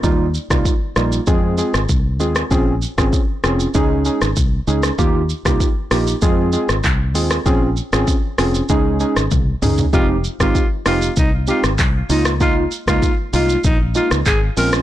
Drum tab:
HH |----------------|----------------|------o-------o-|------o-------o-|
SH |x-xxx-xxx-xxx-xx|x-xxx-xxx-xxx-xx|x-xxx-xxx-xxx-xx|x-xxx-xxx-xxx-xx|
CP |----------------|----------------|------------x---|----------------|
SD |---r--r----r---r|---r--r----r---r|---r--r----r---r|---r--r----r----|
T1 |----------------|----------------|----------------|------------o---|
T2 |----------------|----------------|----------------|--------------o-|
FT |----------------|----------------|----------------|---------------o|
BD |o--oo---o---o---|o--oo---o---o---|o--oo---o---o---|o---o---o---o---|

HH |------o-------o-|------o-------o-|
SH |x-xxx-xxx-xxx-xx|x-xxx-xxx-xxx-xx|
CP |------------x---|------------x---|
SD |---r--r----r---r|---r-------r---r|
T1 |----------------|----------------|
T2 |----------------|----------------|
FT |----------------|----------------|
BD |o--oo---o---o---|o--oo---o---o---|